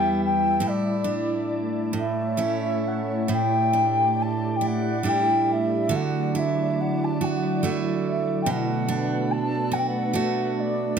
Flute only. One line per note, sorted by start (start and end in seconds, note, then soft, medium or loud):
0.00 0.21 G5 medium
0.24 0.69 G5 medium
0.68 1.68 D5 medium
1.98 2.89 E5 medium
2.87 3.35 F#5 medium
3.33 4.23 G5 medium
4.22 4.57 A5 medium
4.56 4.68 G5 medium
4.66 5.10 F#5 medium
5.08 5.53 G5 medium
5.52 5.97 E5 medium
5.95 6.40 F#5 medium
6.38 6.82 E5 medium
6.80 7.05 F#5 medium
7.04 7.25 A5 medium
7.24 7.82 F#5 medium
8.10 8.43 E5 medium
8.42 8.51 G5 medium
8.50 9.33 F#5 medium
9.31 9.75 A5 loud
9.73 9.80 F#5 medium
9.78 9.88 G5 medium
9.87 10.61 F#5 medium
10.59 10.99 D5 medium